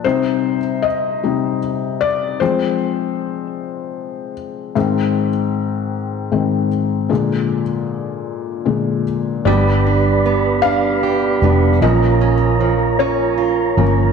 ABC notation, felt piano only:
X:1
M:6/8
L:1/8
Q:3/8=51
K:Gphr
V:1 name="Felt piano"
c2 e3 d | c4- c z | z6 | z6 |
d3 f2 z | e3 _d2 z |]
V:2 name="Felt piano" clef=bass
[C,G,E] z2 [C,G,E] z2 | [F,A,C]6 | [A,,E,C] z3 [A,,E,C] z | [B,,D,A,] z3 [B,,D,A,] z |
[G,=B,D]3 z2 [G,B,D] | [F,B,_D] z4 [F,B,D] |]